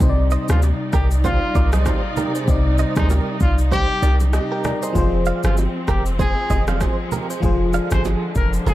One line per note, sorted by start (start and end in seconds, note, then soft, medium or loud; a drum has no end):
0.00 0.37 C2 medium
0.00 2.43 C3 medium
0.00 4.91 C3 medium
0.00 4.91 G3 medium
0.00 2.43 C4 medium
0.00 4.91 D#4 medium
0.00 2.44 D#4 medium
0.00 0.09 C5 medium
0.00 4.91 D5 medium
0.00 kick loud
0.00 low conga medium
0.00 shaker medium
0.09 2.48 D5 medium
0.31 0.46 C5 medium
0.31 0.46 D#5 medium
0.31 shaker soft
0.48 0.73 D2 loud
0.48 0.61 F4 medium
0.48 0.61 G#4 medium
0.48 0.60 C5 medium
0.48 cross-stick loud
0.48 low bongo medium
0.48 shaker medium
0.62 high bongo medium
0.62 shaker medium
0.93 1.40 C2 loud
0.93 1.09 G4 medium
0.93 1.08 G4 medium
0.93 1.08 A#4 medium
0.93 kick loud
0.93 cross-stick medium
0.93 shaker medium
1.11 shaker medium
1.24 1.71 F4 loud
1.24 1.39 G4 medium
1.24 1.39 C5 medium
1.24 kick loud
1.24 low bongo medium
1.24 low conga medium
1.24 shaker medium
1.55 1.92 C2 medium
1.55 1.70 A#4 medium
1.55 1.70 D5 medium
1.55 kick loud
1.55 high bongo medium
1.55 shaker medium
1.73 1.84 C5 medium
1.73 1.84 D#5 medium
1.73 cross-stick loud
1.73 low bongo medium
1.73 shaker medium
1.86 2.01 G4 medium
1.86 2.01 C5 medium
1.86 kick medium
1.86 cross-stick medium
1.86 high bongo medium
1.86 shaker medium
2.17 2.32 G4 medium
2.17 2.32 A#4 medium
2.17 low conga medium
2.17 shaker soft
2.35 2.46 G#4 medium
2.35 2.46 C5 medium
2.35 shaker medium
2.45 2.85 C2 loud
2.45 4.90 C3 medium
2.45 4.91 C4 medium
2.45 4.92 D#4 medium
2.45 kick loud
2.45 low conga medium
2.45 shaker medium
2.50 4.31 D5 medium
2.78 2.94 C5 medium
2.78 2.93 D#5 medium
2.78 shaker medium
2.96 3.20 D2 loud
2.96 3.08 D#4 medium
2.96 3.08 G#4 medium
2.96 3.07 C5 medium
2.96 kick medium
2.96 cross-stick loud
2.96 low bongo medium
2.96 shaker medium
3.10 3.35 G4 medium
3.10 3.35 A#4 medium
3.10 high bongo medium
3.10 shaker medium
3.40 3.87 C2 medium
3.40 3.56 F4 medium
3.40 kick loud
3.40 shaker medium
3.58 shaker medium
3.71 4.18 G4 loud
3.71 3.87 G4 medium
3.71 3.86 C5 medium
3.71 kick loud
3.71 low bongo medium
3.71 low conga medium
3.71 shaker medium
4.02 4.39 C2 medium
4.02 4.18 A#4 medium
4.02 4.17 D5 medium
4.02 high bongo medium
4.02 shaker medium
4.20 low bongo medium
4.20 shaker medium
4.33 4.51 G4 medium
4.33 4.51 D#5 medium
4.33 cross-stick medium
4.33 high bongo medium
4.33 shaker medium
4.51 4.62 G4 medium
4.51 4.62 A#4 medium
4.51 4.64 A#4 medium
4.51 4.64 G5 medium
4.64 4.82 D5 medium
4.64 4.81 A#5 medium
4.64 cross-stick loud
4.64 low conga medium
4.64 shaker medium
4.82 4.93 G#4 medium
4.82 4.93 C5 medium
4.82 5.12 D#5 medium
4.82 5.12 C6 medium
4.82 shaker medium
4.93 5.32 F1 loud
4.93 7.38 F3 medium
4.93 8.74 F3 medium
4.93 8.74 G#3 medium
4.93 7.40 C4 medium
4.93 7.38 F4 medium
4.93 7.39 G#4 medium
4.93 kick loud
4.93 low conga medium
4.93 shaker medium
4.98 7.40 C5 medium
5.26 5.41 D5 medium
5.26 5.41 F5 medium
5.26 shaker soft
5.43 5.67 G1 loud
5.43 5.56 F4 medium
5.43 5.55 G#4 medium
5.43 5.55 C5 medium
5.43 cross-stick loud
5.43 low bongo medium
5.43 shaker medium
5.57 high bongo medium
5.57 shaker medium
5.88 6.35 F1 medium
5.88 6.04 G4 medium
5.88 6.03 G4 medium
5.88 6.03 A#4 medium
5.88 kick loud
5.88 cross-stick loud
5.88 shaker medium
6.06 shaker medium
6.19 6.34 G#4 medium
6.19 6.66 G#4 loud
6.19 6.34 C5 medium
6.19 kick loud
6.19 low bongo medium
6.19 low conga medium
6.19 shaker medium
6.50 6.87 F1 medium
6.50 6.65 C5 medium
6.50 6.65 D#5 medium
6.50 kick medium
6.50 high bongo medium
6.50 shaker medium
6.67 6.79 D5 medium
6.67 6.79 F5 medium
6.67 cross-stick loud
6.67 low bongo medium
6.67 shaker medium
6.81 6.96 G#4 medium
6.81 6.96 C5 medium
6.81 kick medium
6.81 cross-stick medium
6.81 high bongo medium
6.81 shaker medium
7.12 7.27 G4 medium
7.12 7.26 A#4 medium
7.12 low conga medium
7.12 shaker soft
7.30 7.41 G#4 medium
7.30 7.40 C5 medium
7.30 shaker medium
7.40 7.80 F1 loud
7.40 8.74 D3 medium
7.40 8.74 F3 medium
7.40 8.74 F4 medium
7.40 8.74 G#4 medium
7.40 kick loud
7.40 low conga medium
7.40 shaker medium
7.45 8.74 C5 medium
7.73 7.89 D5 medium
7.73 7.88 F5 medium
7.73 shaker medium
7.91 8.15 G1 loud
7.91 8.03 G#4 medium
7.91 8.02 C5 medium
7.91 8.03 C5 medium
7.91 kick medium
7.91 cross-stick loud
7.91 low bongo medium
7.91 shaker medium
8.05 8.30 F4 medium
8.05 8.30 G#4 medium
8.05 high bongo medium
8.05 shaker medium
8.35 8.59 F1 medium
8.35 8.51 A#4 medium
8.35 kick loud
8.35 shaker medium
8.53 shaker medium
8.66 8.74 F1 loud
8.66 8.74 F4 medium
8.66 8.74 G#4 loud
8.66 8.74 A#4 medium
8.66 low bongo medium
8.66 low conga medium
8.66 shaker medium